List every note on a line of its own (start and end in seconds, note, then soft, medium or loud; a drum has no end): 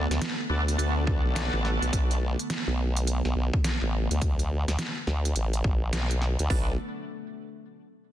0.00 6.46 D3 medium
0.00 6.46 A3 medium
0.00 6.46 B3 loud
0.10 0.20 D2 loud
0.10 snare medium
0.10 closed hi-hat soft
0.22 snare loud
0.22 closed hi-hat medium
0.50 0.77 D2 medium
0.50 0.65 B3 medium
0.50 0.65 D4 medium
0.50 0.65 F#4 medium
0.50 0.65 A4 medium
0.68 closed hi-hat medium
0.78 1.22 D2 loud
0.78 1.04 B3 medium
0.78 1.05 D4 medium
0.78 1.04 F#4 medium
0.78 1.04 A4 loud
0.78 closed hi-hat medium
1.06 2.19 B3 medium
1.06 2.19 D4 medium
1.06 2.19 F#4 medium
1.06 2.19 A4 loud
1.06 kick loud
1.25 1.51 B1 loud
1.36 snare loud
1.36 closed hi-hat medium
1.53 1.79 A1 medium
1.65 snare soft
1.82 1.91 B1 medium
1.82 closed hi-hat soft
1.93 2.36 B1 medium
1.93 kick loud
1.93 closed hi-hat medium
2.11 closed hi-hat medium
2.39 closed hi-hat soft
2.50 snare loud
2.50 closed hi-hat medium
2.68 3.22 B1 loud
2.97 closed hi-hat medium
3.07 closed hi-hat medium
3.25 3.34 B1 medium
3.25 snare soft
3.36 3.51 B1 loud
3.54 kick loud
3.64 snare loud
3.64 closed hi-hat medium
3.82 4.08 A1 medium
4.11 4.65 D2 medium
4.11 closed hi-hat soft
4.21 kick loud
4.21 closed hi-hat medium
4.39 closed hi-hat medium
4.68 4.77 D2 loud
4.68 snare medium
4.68 closed hi-hat soft
4.79 snare loud
4.79 closed hi-hat medium
5.07 5.34 D2 loud
5.07 snare soft
5.25 closed hi-hat medium
5.36 5.63 A1 medium
5.36 closed hi-hat medium
5.53 closed hi-hat soft
5.64 5.91 A1 loud
5.64 kick loud
5.93 6.37 B1 medium
5.93 snare loud
5.93 closed hi-hat medium
6.11 closed hi-hat soft
6.21 snare soft
6.39 6.49 D2 medium
6.39 closed hi-hat soft
6.50 6.77 B1 loud
6.50 6.73 B3 medium
6.50 6.73 D4 medium
6.50 6.73 F#4 medium
6.50 6.73 A4 medium
6.50 kick loud
6.50 open hi-hat medium